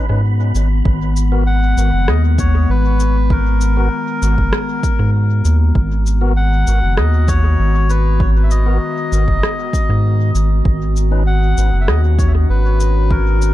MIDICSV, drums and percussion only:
0, 0, Header, 1, 2, 480
1, 0, Start_track
1, 0, Key_signature, 5, "minor"
1, 0, Tempo, 612245
1, 673, Time_signature, 4, 2, 24, 8
1, 10615, End_track
2, 0, Start_track
2, 0, Title_t, "Drums"
2, 432, Note_on_c, 9, 69, 47
2, 510, Note_off_c, 9, 69, 0
2, 669, Note_on_c, 9, 36, 122
2, 748, Note_off_c, 9, 36, 0
2, 913, Note_on_c, 9, 69, 54
2, 991, Note_off_c, 9, 69, 0
2, 1393, Note_on_c, 9, 69, 53
2, 1471, Note_off_c, 9, 69, 0
2, 1631, Note_on_c, 9, 37, 89
2, 1709, Note_off_c, 9, 37, 0
2, 1869, Note_on_c, 9, 36, 100
2, 1871, Note_on_c, 9, 69, 53
2, 1948, Note_off_c, 9, 36, 0
2, 1949, Note_off_c, 9, 69, 0
2, 2350, Note_on_c, 9, 69, 52
2, 2429, Note_off_c, 9, 69, 0
2, 2589, Note_on_c, 9, 36, 123
2, 2668, Note_off_c, 9, 36, 0
2, 2830, Note_on_c, 9, 69, 52
2, 2908, Note_off_c, 9, 69, 0
2, 3312, Note_on_c, 9, 69, 55
2, 3390, Note_off_c, 9, 69, 0
2, 3434, Note_on_c, 9, 36, 65
2, 3513, Note_off_c, 9, 36, 0
2, 3549, Note_on_c, 9, 37, 96
2, 3627, Note_off_c, 9, 37, 0
2, 3789, Note_on_c, 9, 36, 106
2, 3792, Note_on_c, 9, 69, 53
2, 3868, Note_off_c, 9, 36, 0
2, 3870, Note_off_c, 9, 69, 0
2, 4272, Note_on_c, 9, 69, 52
2, 4350, Note_off_c, 9, 69, 0
2, 4510, Note_on_c, 9, 36, 123
2, 4588, Note_off_c, 9, 36, 0
2, 4754, Note_on_c, 9, 69, 52
2, 4832, Note_off_c, 9, 69, 0
2, 5231, Note_on_c, 9, 69, 52
2, 5309, Note_off_c, 9, 69, 0
2, 5467, Note_on_c, 9, 37, 92
2, 5546, Note_off_c, 9, 37, 0
2, 5709, Note_on_c, 9, 36, 109
2, 5709, Note_on_c, 9, 69, 53
2, 5788, Note_off_c, 9, 36, 0
2, 5788, Note_off_c, 9, 69, 0
2, 6192, Note_on_c, 9, 69, 52
2, 6270, Note_off_c, 9, 69, 0
2, 6429, Note_on_c, 9, 36, 126
2, 6508, Note_off_c, 9, 36, 0
2, 6671, Note_on_c, 9, 69, 51
2, 6749, Note_off_c, 9, 69, 0
2, 7153, Note_on_c, 9, 69, 54
2, 7232, Note_off_c, 9, 69, 0
2, 7275, Note_on_c, 9, 36, 63
2, 7353, Note_off_c, 9, 36, 0
2, 7396, Note_on_c, 9, 37, 95
2, 7474, Note_off_c, 9, 37, 0
2, 7631, Note_on_c, 9, 36, 104
2, 7636, Note_on_c, 9, 69, 49
2, 7709, Note_off_c, 9, 36, 0
2, 7714, Note_off_c, 9, 69, 0
2, 8116, Note_on_c, 9, 69, 51
2, 8194, Note_off_c, 9, 69, 0
2, 8352, Note_on_c, 9, 36, 123
2, 8430, Note_off_c, 9, 36, 0
2, 8595, Note_on_c, 9, 69, 48
2, 8674, Note_off_c, 9, 69, 0
2, 9075, Note_on_c, 9, 69, 50
2, 9154, Note_off_c, 9, 69, 0
2, 9315, Note_on_c, 9, 37, 93
2, 9393, Note_off_c, 9, 37, 0
2, 9554, Note_on_c, 9, 36, 102
2, 9558, Note_on_c, 9, 69, 46
2, 9632, Note_off_c, 9, 36, 0
2, 9637, Note_off_c, 9, 69, 0
2, 10036, Note_on_c, 9, 69, 50
2, 10115, Note_off_c, 9, 69, 0
2, 10275, Note_on_c, 9, 36, 116
2, 10353, Note_off_c, 9, 36, 0
2, 10519, Note_on_c, 9, 69, 49
2, 10597, Note_off_c, 9, 69, 0
2, 10615, End_track
0, 0, End_of_file